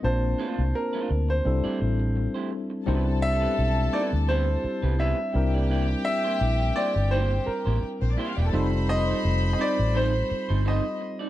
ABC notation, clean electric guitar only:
X:1
M:4/4
L:1/16
Q:"Swing 16ths" 1/4=85
K:C
V:1 name="Clean electric guitar"
z2 [A,DFc] z2 [A,DFc] z3 [A,EGd] z3 [A,EGc] z2 | [B,EGB] z2 [B,EGB] z2 [B,EGB] z [B,EGB] z2 [B,EGB] [B,EGB] z2 [_B,EGd] | [_B,EGd] z2 [B,EGc] z2 [B,EGc] z [B,EGc] z2 [B,EGc] z2 [B,EGc] [B,EGd] | [C_EAc] z2 [CEAc] z2 [CEAc] z [CEAc] z2 [CEAc] [CEAc] z2 [CEAd] |]